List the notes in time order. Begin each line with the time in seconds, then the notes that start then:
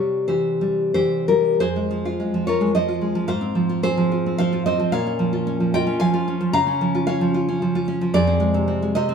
Already playing: C3 G3 G4 C#5
0.28 E3 G4 C5
0.61 G3
0.94 E3 G4 C5
1.28 G3 G4 A#4
1.60 F2 G#4 C5
1.76 G#3
1.91 F3
2.05 F4
2.20 G#3
2.34 F3
2.47 F4 A#4 C#5
2.61 G#3
2.75 F3 C5 D#5
2.88 F4
3.01 G#3
3.15 F3
3.28 G#2 C5 F5
3.41 C4
3.55 F3
3.69 F4
3.83 C4 G#4 C5
3.98 F3
4.12 F4
4.26 C4
4.38 F3 C5 F5
4.53 F4
4.66 C4 C5 D#5
4.80 F3
4.92 A#2 C#5 F5
5.07 C#4
5.19 F3
5.33 F4
5.47 C#4
5.60 F3
5.74 F4 D#5 G5
5.87 C#4
6.00 F3 F5 G#5
6.14 F4
6.28 C#4
6.41 F3
6.53 C#3 F5 A#5
6.67 C#4
6.81 F3
6.95 F4
7.07 C#4 C#5 F5
7.21 F3
7.34 F4
7.48 C#4
7.62 F3
7.75 F4
7.88 C#4
8.01 F3
8.14 F2 G#4 D5
8.27 C4
8.40 G#3
8.54 C3
8.68 C4
8.82 G#3
8.95 C3 C5 D#5
9.09 C4